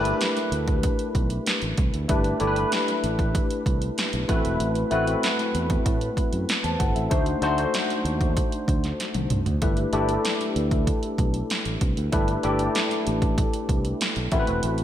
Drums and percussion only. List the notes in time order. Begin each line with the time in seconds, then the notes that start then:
0.05 closed hi-hat
0.21 snare, closed hi-hat
0.37 snare, closed hi-hat
0.52 closed hi-hat
0.68 kick, closed hi-hat
0.83 kick, closed hi-hat
0.99 closed hi-hat
1.15 kick, closed hi-hat
1.30 closed hi-hat
1.47 snare, closed hi-hat
1.62 closed hi-hat
1.77 kick, closed hi-hat
1.94 closed hi-hat
2.09 kick, closed hi-hat
2.24 closed hi-hat
2.40 closed hi-hat
2.56 closed hi-hat
2.72 snare, closed hi-hat
2.88 snare, closed hi-hat
3.04 closed hi-hat
3.19 kick, closed hi-hat
3.35 kick, closed hi-hat
3.51 closed hi-hat
3.66 kick, closed hi-hat
3.82 closed hi-hat
3.98 snare, closed hi-hat
4.13 closed hi-hat
4.29 kick, closed hi-hat
4.45 closed hi-hat
4.60 closed hi-hat
4.75 closed hi-hat
4.91 closed hi-hat
5.07 closed hi-hat
5.23 snare, closed hi-hat
5.39 snare, closed hi-hat
5.55 closed hi-hat
5.70 kick, closed hi-hat
5.86 kick, closed hi-hat
6.01 closed hi-hat
6.17 kick, closed hi-hat
6.33 closed hi-hat
6.49 snare, closed hi-hat
6.64 closed hi-hat
6.80 kick, closed hi-hat
6.96 closed hi-hat
7.11 kick, closed hi-hat
7.26 closed hi-hat
7.42 snare, closed hi-hat
7.58 closed hi-hat
7.74 snare, closed hi-hat
7.90 snare, closed hi-hat
8.05 closed hi-hat
8.21 kick, closed hi-hat
8.37 kick, closed hi-hat
8.52 closed hi-hat
8.68 kick, closed hi-hat
8.84 snare, closed hi-hat
9.00 snare, closed hi-hat
9.14 closed hi-hat, high tom
9.30 closed hi-hat, mid tom
9.46 closed hi-hat, floor tom
9.62 kick, closed hi-hat
9.77 closed hi-hat
9.93 closed hi-hat
10.09 closed hi-hat
10.25 snare, closed hi-hat
10.41 snare, closed hi-hat
10.56 closed hi-hat
10.71 kick, closed hi-hat
10.87 kick, closed hi-hat
11.03 closed hi-hat
11.18 kick, closed hi-hat
11.34 closed hi-hat
11.50 snare, closed hi-hat
11.65 closed hi-hat
11.81 kick, closed hi-hat
11.97 closed hi-hat
12.12 kick, closed hi-hat
12.28 closed hi-hat
12.43 closed hi-hat
12.59 closed hi-hat
12.75 snare, closed hi-hat
12.91 snare, closed hi-hat
13.07 closed hi-hat
13.22 kick, closed hi-hat
13.38 kick, closed hi-hat
13.54 closed hi-hat
13.69 kick, closed hi-hat
13.85 closed hi-hat
14.01 snare, closed hi-hat
14.16 closed hi-hat
14.32 kick, closed hi-hat
14.47 closed hi-hat
14.63 closed hi-hat
14.78 closed hi-hat